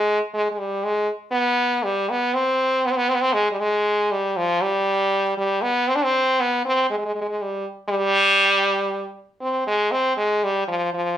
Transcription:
0.00 0.19 G#3 medium
0.34 0.51 G#3 medium
0.51 0.60 G#3 medium
0.58 0.86 G3 medium
0.84 1.09 G#3 medium
1.32 1.85 B3 loud
1.83 2.11 G3 medium
2.10 2.36 B3 medium
2.34 2.87 C4 loud
2.86 2.93 B3 medium
2.91 2.98 C4 medium
2.97 3.11 B3 loud
3.09 3.16 C4 medium
3.15 3.23 B3 medium
3.21 3.35 C4 loud
3.33 3.51 G#3 medium
3.51 3.62 G3 medium
3.60 4.13 G#3 medium
4.11 4.38 G3 medium
4.37 4.63 F3 medium
4.62 5.37 G3 loud
5.37 5.64 G3 medium
5.62 5.90 B3 medium
5.88 5.97 C4 loud
5.96 6.05 D4 medium
6.03 6.42 C4 loud
6.40 6.65 B3 medium
6.66 6.88 C4 medium
6.90 6.97 G#3 medium
6.98 7.04 G#3 medium
7.06 7.12 G#3 medium
7.15 7.20 G#3 medium
7.21 7.27 G#3 medium
7.29 7.43 G#3 medium
7.42 7.66 G3 medium
7.89 9.12 G3 loud
9.41 9.64 C4 medium
9.67 9.93 G#3 loud
9.92 10.16 C4 medium
10.17 10.45 G#3 medium
10.44 10.67 G3 medium
10.68 10.91 F3 medium
10.94 11.18 F3 medium

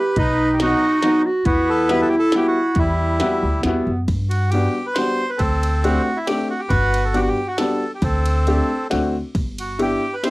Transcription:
0.00 0.20 G4 medium
0.00 0.17 B4 medium
0.16 0.73 B1 medium
0.16 0.59 D#4 medium
0.16 1.01 D#4 medium
0.16 0.55 B4 loud
0.16 kick medium
0.16 closed hi-hat soft
0.53 0.60 G4 medium
0.60 0.83 F#3 medium
0.60 0.83 B3 medium
0.60 1.22 D#4 medium
0.60 0.83 D#4 medium
0.60 0.83 F#4 medium
0.60 1.22 F#4 loud
0.60 snare medium
0.60 closed hi-hat soft
1.02 1.26 F#3 medium
1.02 1.26 B3 medium
1.02 1.28 D#4 medium
1.02 1.26 D#4 medium
1.02 1.26 F#4 medium
1.02 snare medium
1.02 closed hi-hat medium
1.26 1.47 F#4 medium
1.45 2.02 E2 medium
1.45 2.08 B3 medium
1.45 3.38 E4 medium
1.45 1.70 F#4 medium
1.45 kick medium
1.45 closed hi-hat soft
1.70 1.91 A4 medium
1.89 2.13 G3 medium
1.89 2.13 B3 medium
1.89 2.13 E4 medium
1.89 2.13 F#4 medium
1.89 2.01 B4 loud
1.89 snare medium
1.89 closed hi-hat soft
2.02 2.09 A4 medium
2.09 2.16 G4 medium
2.19 2.35 A4 loud
2.32 2.56 G3 medium
2.32 2.57 B3 medium
2.32 2.57 E4 medium
2.32 2.57 F#4 medium
2.32 snare medium
2.32 closed hi-hat soft
2.37 2.47 G4 medium
2.47 2.79 F#4 medium
2.75 3.20 E2 medium
2.75 3.61 G3 medium
2.75 3.62 E4 medium
2.75 kick medium
2.75 closed hi-hat soft
3.20 3.44 G3 medium
3.20 3.44 B3 medium
3.20 3.43 E4 medium
3.20 3.44 F#4 medium
3.20 snare medium
3.20 closed hi-hat soft
3.43 3.62 D2 medium
3.62 3.85 E2 medium
3.62 4.04 B3 medium
3.62 snare medium
3.62 closed hi-hat soft
3.66 3.89 G3 medium
3.66 3.89 B3 medium
3.66 3.89 E4 medium
3.66 3.89 F#4 medium
3.87 4.06 F#2 medium
4.08 4.66 G2 medium
4.08 kick medium
4.08 ride soft
4.29 4.50 F#4 medium
4.29 ride soft
4.50 4.76 G3 medium
4.50 4.77 B3 medium
4.50 4.77 F#4 medium
4.50 4.86 G4 medium
4.50 ride soft
4.54 4.77 D4 medium
4.87 4.97 B4 medium
4.94 5.21 G3 medium
4.94 5.21 B3 soft
4.94 5.21 D4 soft
4.94 5.30 C5 loud
4.94 snare medium
4.94 ride soft
4.98 5.21 F#4 medium
5.30 5.41 B4 medium
5.38 5.97 D2 medium
5.38 6.02 C4 medium
5.38 5.84 A4 medium
5.38 kick medium
5.38 ride soft
5.63 ride soft
5.84 6.08 A3 medium
5.84 6.08 C4 medium
5.84 6.07 D4 medium
5.84 6.18 F#4 medium
5.84 6.08 G4 medium
5.84 ride soft
6.17 6.28 E4 medium
6.27 6.51 A3 medium
6.27 6.51 C4 medium
6.27 6.51 D4 medium
6.27 6.48 G4 medium
6.27 6.51 G4 medium
6.27 snare medium
6.27 ride soft
6.50 6.61 F#4 medium
6.59 6.71 G4 medium
6.68 7.27 G1 loud
6.68 7.20 F#4 medium
6.68 7.04 B4 medium
6.68 kick medium
6.68 ride soft
6.94 ride soft
7.05 7.15 A4 medium
7.14 7.38 G3 medium
7.14 7.37 B3 medium
7.14 7.37 D4 medium
7.14 7.37 F#4 medium
7.14 7.23 G4 loud
7.14 ride soft
7.22 7.29 F#4 medium
7.28 7.48 G4 medium
7.48 7.58 F#4 medium
7.58 7.82 G3 medium
7.58 7.82 B3 medium
7.58 7.82 D4 medium
7.58 7.81 F#4 medium
7.58 7.92 A4 medium
7.58 snare medium
7.58 ride soft
7.95 8.04 G4 medium
8.02 8.59 D2 loud
8.02 8.87 C4 medium
8.02 8.87 A4 medium
8.02 kick medium
8.02 ride soft
8.26 ride medium
8.47 8.70 A3 medium
8.47 8.70 C4 medium
8.47 8.70 D4 medium
8.47 8.70 G4 medium
8.47 ride soft
8.90 9.20 D2 medium
8.90 9.14 A3 medium
8.90 9.14 C4 medium
8.90 9.13 D4 medium
8.90 9.14 F#4 medium
8.90 snare medium
8.90 ride soft
9.35 9.92 G1 medium
9.35 kick medium
9.35 ride soft
9.58 9.80 F#4 medium
9.58 ride medium
9.79 10.02 B3 medium
9.79 10.02 D4 medium
9.79 10.02 E4 medium
9.79 10.02 G4 medium
9.79 10.15 G4 loud
9.79 ride soft
10.14 10.24 B4 medium
10.23 10.30 B3 medium
10.23 10.30 D4 soft
10.23 10.30 E4 medium
10.23 10.30 G4 medium
10.23 10.30 C5 medium
10.23 snare medium
10.23 ride soft

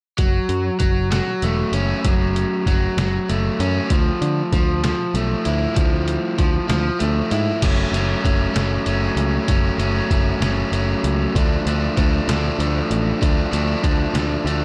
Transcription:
0.18 0.38 F#1 medium
0.18 0.78 F#3 medium
0.18 kick medium
0.18 closed hi-hat medium
0.49 0.69 F#2 medium
0.49 closed hi-hat medium
0.79 1.19 F#1 medium
0.79 1.10 F#3 medium
0.79 kick medium
0.79 closed hi-hat medium
1.11 2.04 F#3 medium
1.11 snare medium
1.11 closed hi-hat medium
1.42 1.62 E1 medium
1.42 3.29 A3 medium
1.42 closed hi-hat soft
1.72 1.92 F#1 medium
1.72 3.29 C#4 medium
1.72 closed hi-hat medium
2.05 2.44 F#1 medium
2.05 2.66 F#3 medium
2.05 kick loud
2.05 closed hi-hat medium
2.36 closed hi-hat medium
2.66 2.86 F#1 medium
2.66 2.98 F#3 medium
2.66 kick medium
2.66 closed hi-hat medium
2.97 3.17 F#1 medium
2.97 3.91 F#3 medium
2.97 snare medium
2.97 closed hi-hat medium
3.29 3.49 F#1 medium
3.29 5.15 A3 medium
3.29 closed hi-hat soft
3.59 3.79 F#2 medium
3.59 3.91 C#4 medium
3.59 closed hi-hat medium
3.90 4.10 D2 medium
3.90 4.52 F3 medium
3.90 kick medium
3.90 closed hi-hat medium
4.21 4.41 D3 medium
4.21 closed hi-hat medium
4.53 4.91 D2 medium
4.53 4.83 F3 medium
4.53 kick medium
4.53 closed hi-hat soft
4.84 5.73 F3 medium
4.84 snare medium
4.84 closed hi-hat medium
5.14 5.34 B1 medium
5.14 6.70 A3 medium
5.14 closed hi-hat soft
5.45 5.65 D2 medium
5.45 7.00 E4 medium
5.45 closed hi-hat medium
5.74 6.16 D2 medium
5.74 6.37 F3 medium
5.74 kick medium
5.74 closed hi-hat medium
6.08 closed hi-hat medium
6.38 6.58 D2 medium
6.38 6.67 F3 medium
6.38 kick medium
6.38 closed hi-hat medium
6.68 6.89 D2 medium
6.68 7.62 F3 medium
6.68 snare medium
6.68 closed hi-hat medium
6.99 7.20 D2 medium
6.99 7.62 A3 medium
6.99 closed hi-hat medium
7.31 7.51 G#2 medium
7.31 7.62 E4 medium
7.31 closed hi-hat medium
7.62 7.84 F#1 medium
7.62 7.93 F#3 medium
7.62 7.93 A3 medium
7.62 7.94 C#4 medium
7.62 kick medium
7.62 closed hi-hat medium
7.62 crash medium
7.92 8.13 F#1 medium
7.92 8.23 F#3 medium
7.92 8.23 A3 medium
7.92 8.23 C#4 medium
7.92 closed hi-hat medium
8.24 8.46 F#1 medium
8.24 8.53 F#3 medium
8.24 8.53 A3 medium
8.24 8.53 C#4 medium
8.24 kick medium
8.24 closed hi-hat soft
8.53 8.77 F#1 medium
8.53 8.85 F#3 medium
8.53 8.86 A3 medium
8.53 8.86 C#4 medium
8.53 snare loud
8.53 closed hi-hat medium
8.86 9.08 F#1 medium
8.86 9.47 F#3 medium
8.86 9.48 A3 medium
8.86 9.48 C#4 medium
8.86 closed hi-hat soft
9.16 9.37 C#2 medium
9.16 closed hi-hat medium
9.48 9.70 F#1 medium
9.48 9.77 F#3 medium
9.48 9.79 A3 medium
9.48 9.79 C#4 medium
9.48 kick medium
9.48 closed hi-hat medium
9.78 10.00 F#1 medium
9.78 10.09 F#3 medium
9.78 10.10 A3 medium
9.78 10.11 C#4 medium
9.78 closed hi-hat soft
10.10 10.32 F#1 medium
10.10 10.41 F#3 medium
10.10 10.41 A3 medium
10.10 10.42 C#4 medium
10.10 kick medium
10.10 closed hi-hat medium
10.40 10.62 F#1 medium
10.40 10.71 F#3 medium
10.40 10.73 A3 medium
10.40 10.73 C#4 medium
10.40 snare loud
10.40 closed hi-hat medium
10.72 10.93 F#1 medium
10.72 11.33 F#3 medium
10.72 11.36 A3 medium
10.72 11.34 C#4 medium
10.72 closed hi-hat medium
11.04 11.25 C#2 medium
11.04 closed hi-hat medium
11.35 11.56 D2 medium
11.35 11.66 F3 medium
11.35 11.66 A3 medium
11.35 11.66 D4 medium
11.35 kick loud
11.35 closed hi-hat medium
11.66 11.87 D2 medium
11.66 11.96 F3 medium
11.66 11.96 A3 medium
11.66 11.98 D4 medium
11.66 closed hi-hat medium
11.97 12.19 D2 medium
11.97 12.26 F3 medium
11.97 12.28 A3 medium
11.97 12.28 D4 medium
11.97 kick medium
11.97 closed hi-hat medium
12.28 12.49 D2 medium
12.28 12.57 F3 medium
12.28 12.59 A3 medium
12.28 12.58 D4 medium
12.28 snare loud
12.28 closed hi-hat medium
12.58 12.80 D2 medium
12.58 13.20 F3 medium
12.58 13.21 A3 medium
12.58 13.20 D4 medium
12.58 closed hi-hat medium
12.91 13.12 A1 medium
12.91 closed hi-hat medium
13.21 13.43 D2 medium
13.21 13.50 F3 medium
13.21 13.51 A3 medium
13.21 13.51 D4 medium
13.21 kick medium
13.21 closed hi-hat medium
13.51 13.74 D2 medium
13.51 13.82 F3 medium
13.51 13.83 A3 medium
13.51 13.82 D4 medium
13.51 closed hi-hat medium
13.83 14.05 D2 medium
13.83 14.13 F3 medium
13.83 14.14 A3 medium
13.83 14.14 D4 medium
13.83 kick medium
13.83 closed hi-hat soft
14.14 14.35 D2 medium
14.14 14.44 F3 medium
14.14 14.46 A3 medium
14.14 14.46 D4 medium
14.14 snare medium
14.14 closed hi-hat medium
14.45 14.65 D2 medium
14.45 14.65 F3 medium
14.45 14.65 A3 medium
14.45 14.65 D4 medium
14.45 closed hi-hat soft

